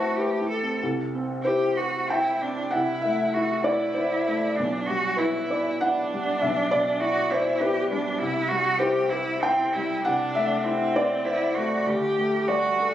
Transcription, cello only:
0.00 0.17 F#4 medium
0.16 0.48 G4 medium
0.49 0.81 A4 medium
1.43 1.78 G4 medium
1.77 2.11 F#4 medium
2.10 2.43 E4 medium
2.42 2.73 D4 medium
2.72 3.35 E4 medium
3.34 3.65 F#4 medium
3.66 4.57 E4 medium
4.56 4.88 D4 medium
4.86 5.19 F#4 medium
5.18 5.82 E4 medium
5.81 7.02 D4 medium
7.00 7.31 F#4 loud
7.30 7.62 E4 medium
7.61 7.90 G4 loud
7.90 8.20 D4 medium
8.18 8.50 E4 loud
8.49 8.80 F#4 loud
8.79 9.11 G4 loud
9.09 9.44 E4 loud
9.42 9.75 C4 loud
9.73 10.04 E4 medium
10.05 10.66 D4 loud
10.65 11.27 C4 loud
11.25 11.57 E4 medium
11.55 11.88 F#4 medium
11.87 12.49 G4 loud
12.48 12.94 F#4 medium

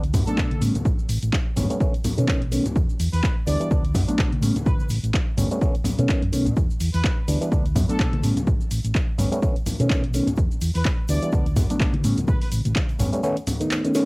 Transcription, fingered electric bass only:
0.00 0.14 D2 medium
0.14 0.22 F#2 medium
0.27 muted fingered electric bass stroke soft
0.38 0.46 B1 loud
0.61 0.69 A2 medium
0.85 0.93 A1 loud
1.09 1.17 A1 medium
1.23 1.29 A1 medium
1.57 1.65 G1 loud
2.18 2.25 B2 medium
2.28 2.58 B1 medium
2.76 2.84 E2 loud
3.00 3.07 E2 medium
3.13 3.20 E2 medium
3.47 3.55 D2 loud
3.71 3.95 D2 medium
3.95 4.03 F#2 medium
4.08 muted fingered electric bass stroke soft
4.19 4.26 B1 loud
4.42 4.50 A2 medium
4.66 4.74 A1 loud
4.90 4.98 A1 medium
5.03 5.10 A1 medium
5.37 5.45 G1 loud
5.99 6.06 B2 medium
6.22 6.29 F#2 medium
6.33 6.48 B1 medium
6.47 6.53 B2 medium
6.57 6.65 E2 loud
6.81 6.88 E2 medium
6.94 7.01 E2 medium
7.28 7.36 D2 loud
7.52 7.76 D2 medium
7.76 7.84 F#2 medium
7.89 muted fingered electric bass stroke soft
7.99 8.07 B1 loud
8.23 8.31 A2 medium
8.47 8.55 A1 loud
8.71 8.79 A1 medium
8.84 8.91 A1 medium
9.18 9.26 G1 loud
9.80 9.87 B2 medium
9.90 10.20 B1 medium
10.38 10.46 E2 loud
10.61 10.69 E2 medium
10.75 10.82 E2 medium
11.09 11.17 D2 loud
11.33 11.56 D2 medium
11.56 11.64 F#2 medium
11.70 muted fingered electric bass stroke soft
11.80 11.88 B1 loud
12.04 12.12 A2 medium
12.28 12.36 A1 loud
12.52 12.60 A1 medium
12.66 12.72 A1 medium
13.00 13.08 G1 loud

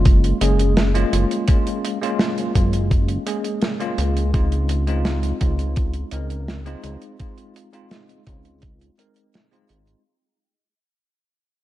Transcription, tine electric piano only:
0.00 0.37 G#3 medium
0.00 0.37 A#3 medium
0.00 0.37 C#4 medium
0.00 0.37 F4 medium
0.41 0.90 G#3 medium
0.41 0.91 A#3 medium
0.41 0.91 C#4 medium
0.41 0.91 G#4 medium
0.95 1.44 G#3 loud
0.95 1.44 A#3 medium
0.95 1.44 C#4 medium
0.95 1.45 F4 loud
1.48 1.97 G#3 medium
1.48 1.98 A#3 medium
1.48 1.98 C#4 medium
1.48 1.98 F4 medium
2.02 2.51 G#3 medium
2.02 2.51 A#3 medium
2.02 2.51 C#4 medium
2.02 2.52 F4 loud
2.55 3.22 G#3 medium
2.55 3.22 A#3 medium
2.55 3.23 C#4 medium
2.55 3.23 F4 medium
3.26 3.76 G#3 medium
3.26 3.76 A#3 medium
3.26 3.76 C#4 medium
3.26 3.77 G#4 medium
3.80 4.29 G#3 medium
3.80 4.30 A#3 medium
3.80 4.30 C#4 medium
3.80 4.30 F4 loud
4.33 4.83 G#3 medium
4.33 4.83 C4 medium
4.33 4.84 D#4 medium
4.33 4.84 F4 medium
4.87 5.37 G#3 medium
4.87 5.37 C4 medium
4.87 5.37 D#4 medium
4.87 5.38 F4 loud
5.40 6.08 G#3 medium
5.40 6.08 C4 medium
5.40 6.08 D#4 medium
5.40 6.09 F4 medium
6.12 6.62 G#3 medium
6.12 6.62 C4 medium
6.12 6.62 D#4 medium
6.12 6.63 A#4 medium
6.66 7.15 G#3 medium
6.66 7.15 C4 medium
6.66 7.16 D#4 medium
6.66 7.16 F4 loud
7.19 7.69 G#3 medium
7.19 7.69 C4 medium
7.19 7.69 D#4 medium
7.19 7.69 F4 medium
7.72 8.22 G#3 medium
7.72 8.22 C4 medium
7.72 8.23 D#4 medium
7.72 8.23 F4 loud
8.27 8.94 G#3 medium
8.27 8.94 C4 medium
8.27 8.94 D#4 medium
8.27 8.95 F4 medium
8.98 9.47 G#3 medium
8.98 9.48 C4 medium
8.98 9.48 D#4 medium
8.98 9.48 A#4 medium
9.51 10.01 G#3 medium
9.51 10.01 C4 medium
9.51 10.01 D#4 medium
9.51 10.02 F4 loud

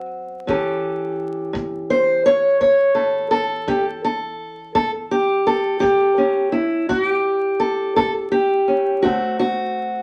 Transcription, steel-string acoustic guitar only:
0.00 0.44 F#3 soft
0.00 0.45 C4 soft
0.00 0.49 F#4 medium
0.47 1.12 A2 medium
0.47 9.04 E3 soft
0.47 4.71 C#4 soft
0.47 3.67 G4 soft
0.47 1.90 A4 soft
1.53 2.18 A2 medium
1.90 2.25 C5 loud
2.26 2.59 C#5 loud
2.61 3.25 A2 medium
2.61 2.94 C#5 loud
2.95 3.30 A4 medium
3.31 4.03 A4 loud
3.67 4.32 A2 medium
3.67 3.84 G4 loud
4.05 4.74 A4 medium
4.75 5.39 A2 medium
4.75 4.91 A4 loud
5.11 5.79 G4 medium
5.47 6.54 A4 medium
5.80 6.47 A2 medium
5.80 6.52 G4 medium
6.18 8.67 C#4 soft
6.52 6.89 E4 medium
6.89 7.54 A2 medium
6.89 7.03 F#4 loud
7.03 8.30 G4 loud
7.60 7.95 A4 medium
7.96 8.62 A2 medium
7.96 8.12 A4 medium
8.32 9.04 G4 medium
8.68 9.00 C#4 soft
9.02 9.68 D3 medium
9.02 10.02 A3 soft
9.02 10.02 C4 soft
9.02 9.38 F#4 medium
9.39 10.02 F#4 medium

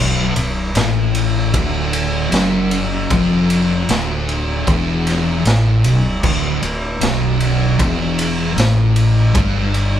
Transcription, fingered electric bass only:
0.00 0.33 B0 medium
0.35 0.72 B0 medium
0.75 1.50 A1 loud
1.54 2.28 D1 loud
2.32 3.07 F#1 medium
3.10 3.85 F1 loud
3.89 4.63 D1 loud
4.67 5.41 E1 medium
5.45 5.82 A1 loud
5.84 6.21 B0 medium
6.24 6.60 D1 loud
6.62 6.99 D1 medium
7.01 7.75 B0 loud
7.79 8.53 E1 loud
8.56 9.31 A1 loud
9.35 10.00 G1 loud

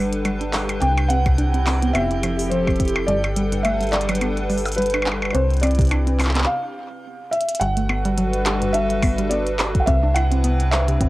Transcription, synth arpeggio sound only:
0.25 0.39 G3 medium
0.41 0.52 D4 medium
0.53 0.67 D4 medium
0.82 0.90 C4 medium
1.10 1.18 C4 loud
1.26 1.36 C3 loud
1.38 1.53 D4 loud
1.54 1.65 C4 medium
1.67 1.82 C4 medium
1.82 1.93 B3 loud
1.95 2.10 B3 loud
2.23 2.31 F3 loud
2.52 2.65 F3 medium
2.67 2.79 C4 medium
2.80 2.93 C4 medium
3.08 3.16 G3 medium
3.36 3.45 G3 loud
3.52 3.63 G2 loud
3.65 3.80 A3 loud
3.81 3.91 G3 medium
3.93 4.08 G3 medium
4.09 4.20 F#3 loud
4.21 4.36 B3 loud
4.50 4.58 G3 loud
4.78 4.92 G3 medium
4.94 5.05 D4 medium
5.06 5.20 D4 medium
5.35 5.43 C4 medium
5.63 5.71 C4 loud
5.79 5.89 C3 loud
5.91 6.06 D4 loud
6.07 6.18 C4 medium
6.20 6.35 C4 medium
6.35 6.46 B3 loud
7.61 7.76 G3 medium
7.77 7.87 A3 medium
7.89 8.03 B3 medium
8.05 8.16 G3 loud
8.18 8.31 F#3 loud
8.46 8.54 G4 medium
8.62 8.72 G2 medium
8.74 8.89 D4 medium
9.02 9.16 B3 medium
9.18 9.29 G3 loud
9.31 9.44 B3 medium
9.59 9.67 G4 medium
9.87 10.02 C4 medium
10.03 10.14 D4 medium
10.16 10.29 E4 medium
10.31 10.42 C4 loud
10.44 10.58 B3 loud
10.72 10.80 C5 medium
10.88 10.99 C3 medium
11.01 11.09 C4 medium

